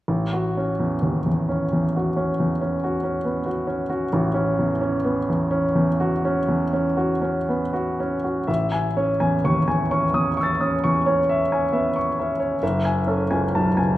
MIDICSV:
0, 0, Header, 1, 2, 480
1, 0, Start_track
1, 0, Tempo, 933126
1, 43, Time_signature, 9, 3, 24, 8
1, 1002, Tempo, 869565
1, 1962, Tempo, 906344
1, 2922, Tempo, 958466
1, 3402, Tempo, 1013514
1, 4362, Tempo, 955414
1, 4842, Tempo, 911854
1, 7229, End_track
2, 0, Start_track
2, 0, Title_t, "Grand piano"
2, 0, Program_c, 0, 0
2, 42, Note_on_c, 0, 33, 33
2, 125, Control_c, 0, 64, 127
2, 168, Note_on_c, 0, 66, 32
2, 294, Note_on_c, 0, 61, 23
2, 362, Note_off_c, 0, 66, 0
2, 410, Note_on_c, 0, 40, 25
2, 484, Note_off_c, 0, 61, 0
2, 527, Note_on_c, 0, 39, 20
2, 601, Note_off_c, 0, 40, 0
2, 647, Note_off_c, 0, 39, 0
2, 649, Note_on_c, 0, 40, 24
2, 765, Note_on_c, 0, 61, 27
2, 838, Note_off_c, 0, 40, 0
2, 889, Note_on_c, 0, 40, 28
2, 954, Note_off_c, 0, 61, 0
2, 1010, Note_on_c, 0, 66, 25
2, 1077, Note_off_c, 0, 40, 0
2, 1121, Note_on_c, 0, 61, 27
2, 1202, Note_off_c, 0, 66, 0
2, 1251, Note_on_c, 0, 40, 28
2, 1317, Note_off_c, 0, 61, 0
2, 1369, Note_on_c, 0, 61, 27
2, 1440, Note_off_c, 0, 40, 0
2, 1494, Note_on_c, 0, 66, 27
2, 1557, Note_off_c, 0, 61, 0
2, 1602, Note_on_c, 0, 61, 27
2, 1679, Note_off_c, 0, 66, 0
2, 1720, Note_on_c, 0, 59, 24
2, 1792, Note_off_c, 0, 61, 0
2, 1835, Note_on_c, 0, 66, 28
2, 1840, Note_off_c, 0, 59, 0
2, 1952, Note_on_c, 0, 61, 29
2, 2028, Note_off_c, 0, 66, 0
2, 2073, Note_on_c, 0, 66, 27
2, 2144, Note_off_c, 0, 61, 0
2, 2174, Note_off_c, 0, 33, 0
2, 2196, Note_on_c, 0, 33, 41
2, 2265, Note_off_c, 0, 66, 0
2, 2308, Note_on_c, 0, 61, 34
2, 2440, Note_on_c, 0, 40, 31
2, 2504, Note_off_c, 0, 61, 0
2, 2558, Note_on_c, 0, 61, 35
2, 2632, Note_off_c, 0, 40, 0
2, 2681, Note_on_c, 0, 59, 30
2, 2751, Note_off_c, 0, 61, 0
2, 2801, Note_off_c, 0, 59, 0
2, 2813, Note_on_c, 0, 40, 33
2, 2926, Note_on_c, 0, 61, 35
2, 2998, Note_off_c, 0, 40, 0
2, 3049, Note_on_c, 0, 40, 35
2, 3112, Note_off_c, 0, 61, 0
2, 3173, Note_on_c, 0, 66, 35
2, 3236, Note_off_c, 0, 40, 0
2, 3297, Note_on_c, 0, 61, 37
2, 3360, Note_off_c, 0, 66, 0
2, 3414, Note_on_c, 0, 40, 36
2, 3480, Note_off_c, 0, 61, 0
2, 3532, Note_on_c, 0, 61, 35
2, 3594, Note_off_c, 0, 40, 0
2, 3644, Note_on_c, 0, 66, 35
2, 3712, Note_off_c, 0, 61, 0
2, 3761, Note_on_c, 0, 61, 31
2, 3830, Note_off_c, 0, 66, 0
2, 3890, Note_on_c, 0, 59, 31
2, 3952, Note_off_c, 0, 61, 0
2, 4005, Note_off_c, 0, 59, 0
2, 4005, Note_on_c, 0, 66, 29
2, 4132, Note_on_c, 0, 61, 29
2, 4202, Note_off_c, 0, 66, 0
2, 4247, Note_on_c, 0, 66, 26
2, 4321, Note_off_c, 0, 61, 0
2, 4343, Note_off_c, 0, 33, 0
2, 4356, Note_on_c, 0, 76, 36
2, 4360, Note_on_c, 0, 33, 35
2, 4362, Note_off_c, 0, 66, 0
2, 4370, Control_c, 0, 64, 0
2, 4458, Control_c, 0, 64, 127
2, 4479, Note_on_c, 0, 80, 32
2, 4550, Note_off_c, 0, 76, 0
2, 4604, Note_on_c, 0, 61, 29
2, 4604, Note_on_c, 0, 73, 27
2, 4673, Note_off_c, 0, 80, 0
2, 4722, Note_on_c, 0, 80, 32
2, 4724, Note_on_c, 0, 40, 27
2, 4795, Note_off_c, 0, 61, 0
2, 4795, Note_off_c, 0, 73, 0
2, 4844, Note_on_c, 0, 39, 27
2, 4846, Note_on_c, 0, 85, 35
2, 4916, Note_off_c, 0, 80, 0
2, 4918, Note_off_c, 0, 40, 0
2, 4965, Note_on_c, 0, 40, 30
2, 4966, Note_on_c, 0, 80, 33
2, 4967, Note_off_c, 0, 39, 0
2, 5042, Note_off_c, 0, 85, 0
2, 5089, Note_on_c, 0, 61, 32
2, 5090, Note_on_c, 0, 85, 35
2, 5161, Note_off_c, 0, 40, 0
2, 5161, Note_off_c, 0, 80, 0
2, 5209, Note_on_c, 0, 40, 30
2, 5211, Note_on_c, 0, 87, 37
2, 5282, Note_off_c, 0, 61, 0
2, 5283, Note_off_c, 0, 85, 0
2, 5330, Note_off_c, 0, 87, 0
2, 5331, Note_on_c, 0, 85, 32
2, 5349, Note_on_c, 0, 88, 23
2, 5363, Note_on_c, 0, 93, 24
2, 5401, Note_off_c, 0, 40, 0
2, 5456, Note_on_c, 0, 87, 30
2, 5457, Note_on_c, 0, 61, 29
2, 5524, Note_off_c, 0, 85, 0
2, 5571, Note_off_c, 0, 87, 0
2, 5577, Note_on_c, 0, 85, 37
2, 5581, Note_on_c, 0, 40, 28
2, 5643, Note_off_c, 0, 61, 0
2, 5694, Note_on_c, 0, 73, 33
2, 5697, Note_on_c, 0, 61, 29
2, 5763, Note_off_c, 0, 85, 0
2, 5765, Note_off_c, 0, 40, 0
2, 5817, Note_on_c, 0, 76, 32
2, 5883, Note_off_c, 0, 73, 0
2, 5884, Note_off_c, 0, 61, 0
2, 5938, Note_on_c, 0, 61, 27
2, 5938, Note_on_c, 0, 80, 31
2, 6004, Note_off_c, 0, 76, 0
2, 6045, Note_on_c, 0, 59, 27
2, 6047, Note_on_c, 0, 76, 33
2, 6123, Note_off_c, 0, 61, 0
2, 6123, Note_off_c, 0, 80, 0
2, 6165, Note_off_c, 0, 59, 0
2, 6168, Note_on_c, 0, 85, 29
2, 6236, Note_off_c, 0, 76, 0
2, 6291, Note_on_c, 0, 76, 29
2, 6292, Note_on_c, 0, 61, 29
2, 6354, Note_off_c, 0, 85, 0
2, 6398, Note_on_c, 0, 73, 28
2, 6474, Note_off_c, 0, 61, 0
2, 6474, Note_off_c, 0, 76, 0
2, 6495, Note_off_c, 0, 33, 0
2, 6506, Note_off_c, 0, 88, 0
2, 6513, Note_off_c, 0, 93, 0
2, 6516, Note_off_c, 0, 73, 0
2, 6519, Note_on_c, 0, 76, 34
2, 6520, Note_on_c, 0, 30, 42
2, 6524, Control_c, 0, 64, 0
2, 6600, Control_c, 0, 64, 127
2, 6637, Note_on_c, 0, 80, 33
2, 6707, Note_off_c, 0, 76, 0
2, 6752, Note_on_c, 0, 61, 28
2, 6756, Note_on_c, 0, 69, 29
2, 6827, Note_off_c, 0, 80, 0
2, 6877, Note_on_c, 0, 80, 30
2, 6878, Note_on_c, 0, 37, 28
2, 6946, Note_off_c, 0, 61, 0
2, 6948, Note_off_c, 0, 69, 0
2, 7005, Note_on_c, 0, 81, 33
2, 7009, Note_on_c, 0, 35, 27
2, 7071, Note_off_c, 0, 37, 0
2, 7071, Note_off_c, 0, 80, 0
2, 7121, Note_on_c, 0, 80, 31
2, 7123, Note_on_c, 0, 37, 28
2, 7125, Note_off_c, 0, 35, 0
2, 7196, Note_off_c, 0, 81, 0
2, 7229, Note_off_c, 0, 30, 0
2, 7229, Note_off_c, 0, 37, 0
2, 7229, Note_off_c, 0, 80, 0
2, 7229, End_track
0, 0, End_of_file